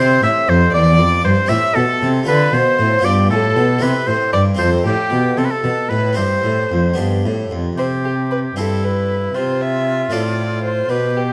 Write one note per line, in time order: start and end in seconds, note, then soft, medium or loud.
0.00 0.21 C3 medium
0.00 0.22 C3 medium
0.00 1.45 C4 medium
0.00 1.46 E4 medium
0.00 1.47 G4 medium
0.00 0.22 C5 medium
0.00 0.22 C5 loud
0.22 0.30 A2 medium
0.22 0.46 A2 medium
0.22 0.31 E5 medium
0.22 0.51 E5 loud
0.47 0.72 F2 medium
0.47 0.71 F2 medium
0.47 0.72 C5 medium
0.47 0.73 C5 loud
0.72 0.99 E2 medium
0.72 0.98 E2 medium
0.72 1.26 D5 loud
0.72 1.24 D5 loud
0.98 1.23 F2 medium
1.24 1.32 G2 medium
1.24 1.49 G2 medium
1.24 1.50 C5 loud
1.24 1.52 C5 medium
1.46 1.58 A2 medium
1.46 2.23 C4 medium
1.46 2.24 E4 medium
1.46 2.24 G4 medium
1.46 1.76 E5 loud
1.50 1.74 A2 medium
1.50 1.75 E5 loud
1.75 1.99 B2 medium
1.75 1.84 B2 medium
1.75 2.09 A4 loud
1.75 2.26 A4 medium
2.01 2.26 C3 medium
2.01 2.25 C3 medium
2.23 2.52 D3 medium
2.23 2.50 A3 medium
2.23 3.00 F4 medium
2.23 3.02 A4 medium
2.27 2.51 D3 medium
2.27 2.55 B4 loud
2.27 2.53 B4 medium
2.53 2.61 B2 medium
2.53 2.77 B2 medium
2.53 3.04 C5 medium
2.53 3.06 C5 loud
2.79 3.02 A2 medium
2.79 3.04 A2 medium
2.99 3.27 B3 medium
2.99 3.78 F4 medium
2.99 3.78 G4 medium
3.04 3.27 G2 medium
3.04 3.31 G2 medium
3.04 3.30 D5 loud
3.04 3.13 D5 medium
3.30 3.57 A2 medium
3.30 3.54 A2 medium
3.30 3.84 A4 loud
3.30 3.84 A4 medium
3.56 3.81 B2 medium
3.56 3.80 B2 medium
3.79 3.89 C3 medium
3.79 4.53 C4 medium
3.79 4.56 E4 medium
3.79 4.56 G4 medium
3.79 4.08 B4 medium
3.79 4.07 B4 medium
3.83 4.05 C3 medium
4.07 4.16 A2 medium
4.07 4.31 A2 medium
4.07 4.32 C5 loud
4.07 4.15 C5 medium
4.33 4.58 G2 medium
4.33 4.57 G2 medium
4.33 4.44 D5 loud
4.33 4.41 D5 medium
4.55 4.84 F2 medium
4.55 5.07 C4 medium
4.55 6.12 F4 medium
4.55 6.13 A4 medium
4.55 4.70 C5 loud
4.59 4.83 F2 medium
4.59 4.84 C5 medium
4.85 4.93 A2 medium
4.85 5.09 A2 medium
4.85 5.39 G4 medium
4.85 5.36 G4 medium
5.10 5.36 B2 medium
5.10 5.34 B2 medium
5.37 5.45 C3 medium
5.37 5.61 C3 medium
5.37 5.92 A4 medium
5.37 5.46 A4 medium
5.45 5.52 B4 medium
5.51 5.91 A4 medium
5.64 5.72 B2 medium
5.64 5.88 B2 medium
5.89 6.18 A2 medium
5.89 6.15 A2 medium
5.89 6.16 B4 medium
5.89 6.17 B4 medium
6.13 6.41 C4 medium
6.13 6.95 E4 medium
6.13 6.95 G4 soft
6.13 6.97 C5 medium
6.17 6.43 G2 medium
6.17 6.42 G2 medium
6.17 6.97 C5 medium
6.44 6.69 A2 medium
6.44 6.71 A2 medium
6.72 6.96 F2 medium
6.72 6.98 F2 medium
6.94 7.22 B3 soft
6.94 7.23 D4 soft
6.94 7.75 G4 soft
6.98 7.23 G2 medium
6.98 7.27 G2 medium
7.26 7.50 A2 medium
7.26 7.51 A2 medium
7.51 7.76 F2 soft
7.51 7.77 F2 medium
7.77 8.53 C3 soft
7.77 8.53 C3 medium
7.77 8.53 G4 medium
7.77 7.86 C5 medium
8.05 8.13 G4 medium
8.31 8.39 B4 medium
8.56 9.33 G2 medium
8.56 9.31 G2 soft
8.56 9.13 C4 soft
8.56 9.13 E4 soft
8.56 9.37 E4 medium
8.56 9.14 G4 soft
8.56 8.85 A4 medium
8.84 9.36 B4 medium
9.34 10.10 C3 medium
9.34 10.08 C3 soft
9.34 10.90 F4 medium
9.34 9.62 C5 medium
9.61 10.14 E5 medium
10.10 10.85 A2 soft
10.10 10.88 A2 medium
10.10 10.67 C4 soft
10.10 10.67 F4 soft
10.10 10.67 A4 soft
10.10 10.63 D5 medium
10.64 10.91 C5 medium
10.89 11.33 B2 soft
10.89 11.33 B2 medium
10.89 11.33 G4 medium
10.89 11.18 B4 medium
11.17 11.33 G4 medium